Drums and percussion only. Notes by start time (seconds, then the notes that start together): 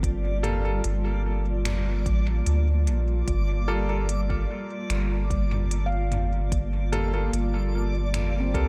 0.03 kick, closed hi-hat
0.44 closed hi-hat, mid tom
0.84 closed hi-hat
1.65 finger snap, closed hi-hat, mid tom
2.06 kick, closed hi-hat
2.46 closed hi-hat
2.87 closed hi-hat
3.28 kick, closed hi-hat
4.09 closed hi-hat
4.30 kick
4.90 finger snap, closed hi-hat
5.30 kick, closed hi-hat
5.52 mid tom
5.71 closed hi-hat
6.12 closed hi-hat, mid tom
6.52 kick, closed hi-hat
6.93 closed hi-hat, mid tom
7.33 closed hi-hat
8.14 finger snap, closed hi-hat, mid tom
8.54 kick, closed hi-hat